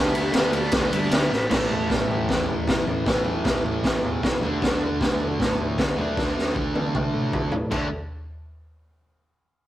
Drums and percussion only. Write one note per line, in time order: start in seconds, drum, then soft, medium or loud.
0.15 ride loud
0.33 snare loud
0.33 ride loud
0.53 ride medium
0.72 kick loud
0.72 snare loud
0.72 ride loud
0.93 ride medium
1.11 snare loud
1.11 ride loud
1.33 snare medium
1.51 kick loud
1.51 snare loud
1.51 floor tom medium
1.51 crash loud
1.71 floor tom medium
1.90 kick loud
1.90 snare loud
1.90 floor tom medium
2.09 floor tom medium
2.29 kick loud
2.29 snare loud
2.29 floor tom medium
2.48 floor tom medium
2.67 kick loud
2.67 snare loud
2.67 floor tom medium
2.87 floor tom medium
3.06 kick loud
3.06 snare loud
3.06 floor tom medium
3.25 floor tom medium
3.44 kick loud
3.44 snare loud
3.44 floor tom medium
3.64 floor tom medium
3.84 kick medium
3.84 snare loud
3.84 floor tom medium
4.04 floor tom medium
4.23 kick loud
4.23 snare loud
4.23 floor tom medium
4.43 floor tom medium
4.62 kick loud
4.62 snare loud
4.62 floor tom medium
4.81 floor tom medium
5.01 kick loud
5.01 snare loud
5.01 floor tom medium
5.21 floor tom medium
5.40 kick medium
5.40 snare medium
5.40 floor tom medium
5.60 floor tom medium
5.78 kick loud
5.78 snare loud
5.78 floor tom medium
5.99 floor tom medium
6.17 kick loud
6.17 snare medium
6.39 snare medium
6.56 kick loud
6.75 high tom medium
6.95 kick medium
6.95 mid tom medium
7.33 kick loud
7.33 floor tom medium
7.52 floor tom medium
7.71 kick loud
7.71 crash medium